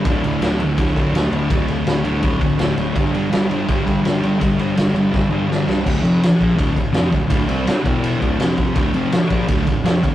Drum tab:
CC |--------|--------|--------|--------|
RD |xxxxxxxx|xxxxxxxx|xxxxxxxx|xxxx----|
SD |--o---o-|--o---o-|--o---o-|--o-o-oo|
BD |o---oo--|o---oo--|o---oo--|o---o---|

CC |x-------|--------|--------|
RD |-xxxxxxx|xxxxxxxx|xxxxxxxx|
SD |--o---oo|--o---o-|--o---o-|
BD |o--ooo-o|o--o-o-o|o--ooo-o|